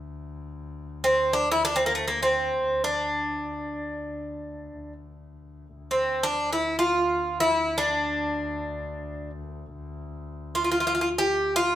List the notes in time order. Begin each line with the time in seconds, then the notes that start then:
Already playing: D2
1.04 C4
1.33 D4
1.51 E4
1.65 D4
1.76 C4
1.86 A#3
1.95 A3
2.08 A#3
2.23 C4
2.84 D4
5.75 D2
5.91 C4
6.23 D4
6.53 E4
6.79 F4
7.40 E4
7.78 D4
10.55 F4
10.64 F4
10.71 F4
10.80 F4
10.87 F4
10.95 F4
11.01 F4
11.18 G4
11.56 F4